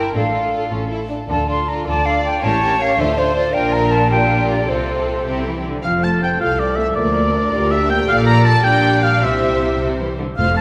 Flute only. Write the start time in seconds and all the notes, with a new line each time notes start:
Already playing: G5
0.16 F5
1.30 A5
1.50 C6
1.68 A#5
1.88 A5
2.06 F5
2.25 G5
2.44 A5
2.81 F5
3.00 E5
3.18 C5
3.37 D5
3.54 G5
3.73 A#5
3.91 A5
4.11 G5
4.50 D5
4.69 C5